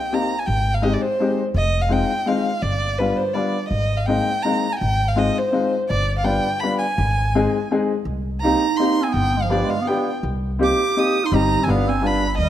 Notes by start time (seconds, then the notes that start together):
Already playing: G5
0.12 A#3 C4 D#4 G4 A#5
0.39 G#5
0.46 G#1 G5
0.74 F5
0.82 G#3 C4 D#4 G4 D#5
0.93 D5
1.02 C5
1.20 G#3 C4 D#4 G4
1.54 F1 D#5
1.82 F5
1.89 G#3 C4 D#4 F4 G5
2.26 G#3 C4 D#4 F4 F5
2.62 G1 D5
2.98 G3 B3 D4 F4 B4
3.17 C5
3.34 G3 B3 D4 F4 D5
3.69 G#1 D#5
3.97 F5
4.06 G#3 A#3 C4 D#4 G5
4.43 G#3 A#3 C4 D#4 A#5
4.72 G#5
4.79 G#1 G5
5.08 F5
5.16 G#3 C4 D#4 F4 D#5
5.38 C5
5.52 G#3 C4 D#4 F4
5.89 G1 D5
6.18 F5
6.24 G3 B3 D4 F4 G5
6.60 G3 B3 D4 F4 B5
6.79 G#5
6.98 G#1
7.35 G#3 C4 D#4 G#4
7.71 G#3 C4 D#4 G#4
8.05 C2
8.41 A#3 C4 D#4 G4 A#5
8.74 D#4 C6
8.79 A#3 C4 D#4 G4
9.02 C4 G#5
9.08 B3
9.13 G1 G5
9.37 G#3
9.42 F3 F5
9.50 B3 D4 F4 G4 D5
9.64 G#3
9.70 F5
9.81 B3
9.87 B3 D4 F4 G4 G5
10.23 C2
10.59 A#3 C4 D#4 G4
10.64 D6
10.96 A#3 C4 D#4 G4 D#6
11.25 D#4 C6
11.32 G1 G3 C4 D#4 G4 A#5
11.62 C4 G#5
11.67 G1 G3 B3 D4 F4 F5
11.87 C4 G#5
12.02 G3 B3 D4 F4
12.07 B5
12.37 D#2 G3 D#5